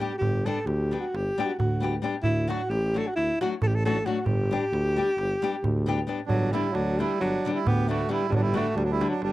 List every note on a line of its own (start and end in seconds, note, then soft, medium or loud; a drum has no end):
0.00 0.12 G3 medium
0.00 0.12 B3 soft
0.00 0.12 D4 soft
0.00 0.18 G4 medium
0.00 0.12 G4 medium
0.00 darbuka tek medium
0.12 darbuka tek soft
0.18 0.48 G1 medium
0.18 0.47 G4 medium
0.18 darbuka dum medium
0.35 darbuka tek soft
0.45 0.58 G3 medium
0.45 0.58 B3 soft
0.45 0.58 D4 medium
0.45 0.59 G4 medium
0.45 0.68 A4 medium
0.45 darbuka tek medium
0.66 0.94 D2 loud
0.66 0.99 G4 medium
0.66 darbuka tek medium
0.91 1.04 G3 soft
0.91 1.04 B3 soft
0.91 1.04 D4 soft
0.91 1.05 G4 soft
0.91 darbuka tek medium
1.00 1.17 F#4 medium
1.13 1.28 G1 medium
1.13 1.47 G4 medium
1.13 darbuka tek medium
1.27 darbuka tek soft
1.38 1.50 G3 medium
1.38 1.50 B3 medium
1.38 1.51 D4 medium
1.38 1.51 G4 medium
1.38 darbuka tek medium
1.45 1.58 F#4 medium
1.50 darbuka tek soft
1.59 1.97 D2 medium
1.59 1.95 F#4 medium
1.59 darbuka dum medium
1.80 1.93 G3 medium
1.80 1.94 B3 soft
1.80 1.94 D4 soft
1.80 1.94 G4 medium
1.84 darbuka tek medium
2.02 2.14 G3 medium
2.02 2.15 B3 medium
2.02 2.15 D4 soft
2.02 2.15 G4 medium
2.02 darbuka tek medium
2.15 darbuka tek soft
2.23 2.51 D2 medium
2.23 2.51 E4 medium
2.23 darbuka dum medium
2.48 2.60 F#3 medium
2.48 2.60 A3 medium
2.48 2.61 D4 soft
2.48 2.71 F#4 medium
2.48 2.61 F#4 medium
2.48 darbuka tek medium
2.61 darbuka tek soft
2.69 2.97 A1 loud
2.69 2.99 G4 medium
2.69 darbuka tek medium
2.94 3.07 F#3 soft
2.94 3.07 A3 soft
2.94 3.07 D4 soft
2.94 3.08 F#4 medium
2.94 3.09 A4 medium
2.94 darbuka tek medium
3.07 3.15 F#4 medium
3.16 3.31 D2 medium
3.16 3.39 E4 loud
3.16 darbuka tek medium
3.30 darbuka tek soft
3.41 3.53 F#3 medium
3.41 3.53 A3 medium
3.41 3.54 D4 medium
3.41 3.51 F#4 medium
3.41 3.54 F#4 medium
3.41 darbuka tek medium
3.53 darbuka tek soft
3.61 4.00 A1 medium
3.61 3.69 A4 loud
3.61 darbuka dum loud
3.67 3.77 G4 medium
3.75 3.85 A4 loud
3.85 3.97 F#3 medium
3.85 3.97 A3 medium
3.85 3.97 D4 medium
3.85 3.98 F#4 medium
3.85 4.07 A4 loud
3.85 darbuka tek medium
4.06 4.17 F#3 medium
4.06 4.17 A3 soft
4.06 4.18 D4 soft
4.06 4.27 F#4 medium
4.06 4.18 F#4 medium
4.06 darbuka tek medium
4.17 darbuka tek soft
4.25 4.54 G1 medium
4.25 6.07 G4 medium
4.25 darbuka dum medium
4.40 darbuka tek soft
4.51 4.63 G3 medium
4.51 4.63 B3 soft
4.51 4.64 D4 medium
4.51 4.64 G4 medium
4.51 darbuka tek medium
4.72 5.00 D2 medium
4.72 darbuka tek medium
4.96 5.09 G3 medium
4.96 5.09 B3 soft
4.96 5.09 D4 soft
4.96 5.09 G4 medium
5.10 darbuka tek soft
5.18 5.33 G1 medium
5.18 darbuka tek medium
5.30 darbuka tek soft
5.42 5.55 G3 medium
5.42 5.55 B3 medium
5.42 5.55 D4 medium
5.42 5.55 G4 medium
5.42 darbuka tek medium
5.54 darbuka tek soft
5.64 6.02 D2 loud
5.64 darbuka dum medium
5.76 darbuka tek soft
5.86 5.98 G3 medium
5.86 5.99 B3 medium
5.86 5.99 D4 medium
5.86 5.99 G4 medium
5.86 darbuka tek medium
5.99 darbuka tek soft
6.07 6.19 G3 soft
6.07 6.19 B3 medium
6.07 6.19 D4 medium
6.07 6.20 G4 medium
6.07 darbuka tek medium
6.20 darbuka tek soft
6.26 6.55 G1 medium
6.26 6.54 F#3 loud
6.26 6.50 D4 medium
6.26 darbuka dum medium
6.42 darbuka tek soft
6.52 6.65 D3 medium
6.52 6.74 G3 medium
6.52 6.65 G3 medium
6.52 6.65 B3 medium
6.52 6.66 D4 medium
6.52 6.73 E4 medium
6.52 darbuka tek medium
6.64 darbuka tek soft
6.72 7.02 D2 medium
6.72 7.00 F#3 medium
6.72 6.98 D4 medium
6.72 darbuka tek medium
6.98 7.11 D3 soft
6.98 7.19 G3 medium
6.98 7.11 G3 medium
6.98 7.11 B3 soft
6.98 7.12 D4 medium
6.98 7.20 E4 medium
6.98 darbuka tek medium
7.20 7.35 G1 medium
7.20 7.55 F#3 loud
7.20 7.51 D4 medium
7.20 darbuka tek medium
7.33 darbuka tek soft
7.45 7.57 D3 medium
7.45 7.57 G3 medium
7.45 7.58 B3 medium
7.45 7.58 D4 medium
7.45 darbuka tek medium
7.53 7.66 G3 medium
7.53 7.67 E4 medium
7.53 darbuka tek soft
7.65 8.04 D2 medium
7.65 7.90 B3 medium
7.65 7.88 G4 medium
7.65 darbuka dum loud
7.88 8.00 D3 medium
7.88 8.00 G3 medium
7.88 8.11 A3 medium
7.88 8.00 B3 medium
7.88 8.01 D4 medium
7.88 8.10 F#4 medium
7.88 darbuka tek medium
8.09 8.20 D3 soft
8.09 8.20 G3 medium
8.09 8.28 G3 loud
8.09 8.21 B3 medium
8.09 8.21 D4 soft
8.09 8.30 E4 medium
8.09 darbuka tek medium
8.29 8.57 G1 medium
8.29 8.37 G3 medium
8.29 8.34 D4 medium
8.29 darbuka dum medium
8.35 8.44 F#3 medium
8.35 8.42 D4 medium
8.42 8.59 G3 loud
8.42 8.54 E4 medium
8.46 darbuka tek soft
8.54 8.66 D3 medium
8.54 8.66 G3 soft
8.54 8.78 A3 medium
8.54 8.66 B3 medium
8.54 8.66 D4 medium
8.54 8.75 F#4 medium
8.54 darbuka tek medium
8.68 darbuka tek soft
8.74 9.03 D2 loud
8.74 8.86 G3 medium
8.74 8.82 D4 medium
8.74 darbuka tek medium
8.84 8.94 F#3 medium
8.84 8.92 D4 medium
8.92 9.11 G3 medium
8.92 9.07 E4 medium
9.01 9.12 D3 medium
9.01 9.12 G3 soft
9.01 9.13 B3 soft
9.01 9.13 D4 medium
9.01 darbuka tek medium
9.09 9.22 F#3 medium
9.09 9.21 D4 medium
9.22 9.32 G1 medium
9.22 9.32 G3 medium
9.22 9.32 D4 medium
9.22 darbuka tek medium